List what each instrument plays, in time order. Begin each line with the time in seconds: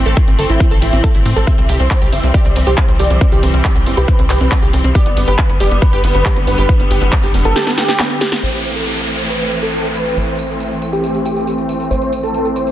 Already playing: string section E3 A3 C4
0.06 analog synth bass A1, synth pluck A4, closed hi-hat
0.17 synth pluck E4, kick, closed hi-hat
0.28 analog synth bass A1, synth pluck C4, closed hi-hat
0.39 analog synth bass G1, synth pluck A4, open hi-hat
0.49 analog synth bass A1, synth pluck E4, supersaw synth E4, closed hi-hat
0.60 synth pluck C4, kick, closed hi-hat
0.71 analog synth bass A1, synth pluck A4, closed hi-hat
0.82 analog synth bass A1, synth pluck E4, supersaw synth E4, open hi-hat
0.93 analog synth bass A1, synth pluck C4, closed hi-hat
1.04 synth pluck A4, kick, closed hi-hat
1.15 analog synth bass A1, synth pluck E4, closed hi-hat
1.25 analog synth bass A2, synth pluck C4, open hi-hat
1.36 analog synth bass A1, synth pluck A4, closed hi-hat
1.47 string section E3 G3, synth pluck C4, supersaw synth E5, kick, closed hi-hat
1.58 analog synth bass C2, synth pluck C4, closed hi-hat
1.69 analog synth bass C2, synth pluck G4, open hi-hat
1.80 analog synth bass C2, synth pluck C4, supersaw synth C5, closed hi-hat
1.91 kick, clap, closed hi-hat
2.02 analog synth bass C2, synth pluck G4, closed hi-hat
2.12 analog synth bass G1, synth pluck C4, supersaw synth E5, open hi-hat
2.23 analog synth bass C2, synth pluck C4, closed hi-hat
2.34 synth pluck G4, supersaw synth D5, kick, closed hi-hat
2.45 analog synth bass C2, synth pluck C4, closed hi-hat
2.56 analog synth bass C2, synth pluck C4, open hi-hat
2.67 analog synth bass C2, synth pluck G4, supersaw synth C5, closed hi-hat
2.78 synth pluck C4, kick, clap, closed hi-hat
2.89 analog synth bass C2, synth pluck C4, closed hi-hat
2.99 analog synth bass C2, synth pluck G4, supersaw synth D5, open hi-hat
3.10 analog synth bass C2, synth pluck C4, closed hi-hat
3.21 synth pluck C4, kick, closed hi-hat
3.32 analog synth bass C2, synth pluck G4, closed hi-hat
3.43 analog synth bass C2, synth pluck C4, open hi-hat
3.54 analog synth bass C2, synth pluck C4, closed hi-hat
3.65 synth pluck G4, kick, clap, closed hi-hat
3.76 analog synth bass C2, synth pluck C4, closed hi-hat
3.86 analog synth bass G1, synth pluck C4, open hi-hat
3.97 analog synth bass C2, synth pluck G4, supersaw synth B4, closed hi-hat
4.08 synth pluck C4, kick, closed hi-hat
4.19 analog synth bass C2, synth pluck C4, closed hi-hat
4.30 analog synth bass C2, synth pluck G4, supersaw synth B4, clap, open hi-hat
4.41 analog synth bass C2, synth pluck C4, closed hi-hat
4.52 kick, clap, closed hi-hat
4.62 analog synth bass C2, synth pluck G4, closed hi-hat
4.73 analog synth bass C2, synth pluck C4, open hi-hat
4.84 analog synth bass C2, synth pluck C4, closed hi-hat
4.95 string section D3 G3 B3, synth pluck G4, supersaw synth D5, kick, closed hi-hat
5.06 analog synth bass G1, synth pluck B3, closed hi-hat
5.17 analog synth bass G1, synth pluck B3, open hi-hat
5.28 analog synth bass G1, synth pluck G4, supersaw synth B4, closed hi-hat
5.39 synth pluck B3, kick, clap, closed hi-hat
5.49 analog synth bass G1, synth pluck B3, closed hi-hat
5.60 analog synth bass F1, synth pluck G4, supersaw synth D5, open hi-hat
5.71 analog synth bass G1, synth pluck B3, closed hi-hat
5.82 synth pluck B3, supersaw synth B4, kick, closed hi-hat
5.93 analog synth bass G1, synth pluck G4, closed hi-hat
6.04 analog synth bass G1, synth pluck B3, open hi-hat
6.15 analog synth bass G1, synth pluck B3, supersaw synth B4, closed hi-hat
6.26 synth pluck G4, kick, clap, closed hi-hat
6.36 analog synth bass G1, synth pluck B3, closed hi-hat
6.47 analog synth bass G1, synth pluck B3, supersaw synth B4, open hi-hat
6.58 analog synth bass G1, synth pluck G4, closed hi-hat
6.69 synth pluck B3, kick, closed hi-hat
6.80 analog synth bass G1, synth pluck B3, closed hi-hat
6.91 analog synth bass G1, synth pluck G4, open hi-hat
7.02 analog synth bass G1, synth pluck B3, closed hi-hat
7.12 synth pluck B3, kick, clap, closed hi-hat
7.23 analog synth bass G1, synth pluck G4, closed hi-hat
7.34 analog synth bass F1, synth pluck B3, open hi-hat
7.45 analog synth bass G1, synth pluck B3, supersaw synth A4, closed hi-hat
7.56 synth pluck G4, snare, closed hi-hat
7.67 synth pluck B3, snare, closed hi-hat
7.78 synth pluck B3, supersaw synth G4, snare, open hi-hat
7.89 synth pluck G4, snare, closed hi-hat
7.99 synth pluck B3, snare, clap, closed hi-hat
8.10 synth pluck B3, closed hi-hat
8.21 synth pluck G4, snare, open hi-hat
8.32 synth pluck B3, snare, closed hi-hat
8.43 analog synth bass A1, string section E3 A3 C4, supersaw synth C5, tambourine, downlifter
8.54 tambourine
8.65 tambourine
8.76 supersaw synth A4, tambourine
8.86 tambourine
8.97 tambourine
9.08 supersaw synth C5, tambourine
9.19 tambourine
9.30 supersaw synth B4, tambourine
9.41 tambourine
9.52 tambourine
9.63 supersaw synth A4, tambourine
9.73 tambourine
9.84 tambourine
9.95 supersaw synth B4, tambourine
10.06 tambourine
10.17 analog synth bass A1, tambourine
10.28 tambourine
10.39 tambourine
10.49 tambourine
10.60 tambourine
10.71 tambourine
10.82 tambourine
10.93 supersaw synth G4, tambourine
11.04 tambourine
11.15 tambourine
11.26 supersaw synth G4, tambourine
11.36 tambourine
11.47 tambourine
11.58 tambourine
11.69 tambourine
11.80 tambourine
11.91 analog synth bass A1, supersaw synth C5, tambourine
12.02 tambourine
12.13 tambourine
12.23 supersaw synth A4, tambourine
12.34 tambourine
12.45 tambourine
12.56 supersaw synth C5, tambourine
12.67 tambourine